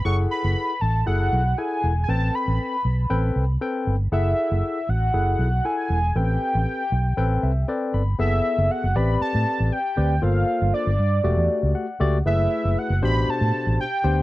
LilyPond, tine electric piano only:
\new Staff \with { instrumentName = "Tine electric piano" } { \time 4/4 \key a \lydian \tempo 4 = 118 << { r1 | r1 | r1 | r2 r8 e''8 g''8 b''8 |
r1 | r2. fis''4 | r1 | } \\ { <e' gis' a' fis''>4. r8 <e' gis' a' fis''>8 r8 <e' gis' a' fis''>8 r8 | <c' a' b' g''>4. r8 <c' a' b' g''>8 r8 <c' a' b' g''>8 r8 | <e' gis' a' fis''>4. r8 <e' gis' a' fis''>8 r8 <e' a' fis'' gis''>8 r8 | <c' a' b' g''>4. r8 <c' a' b' g''>8 r8 <c' a' b' d''>8 r8 |
<b gis' a' e''>4. <c' g' b' d''>4. r8 <c' g' b' d''>8 | <bes f' a' c''>4. r8 <a fis' g' d''>4 r8 <a fis' g' d''>8 | <a e' gis' b'>4. <b, d' g' c''>4. r8 <b d' g' c''>8 | } >> }